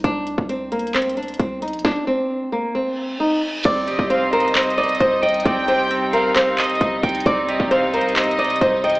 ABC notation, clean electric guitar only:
X:1
M:4/4
L:1/8
Q:1/4=133
K:Cm
V:1 name="Clean electric guitar"
z8 | z8 | C G C c C e2 g | C G C c C e2 g |
C G C c C e2 g |]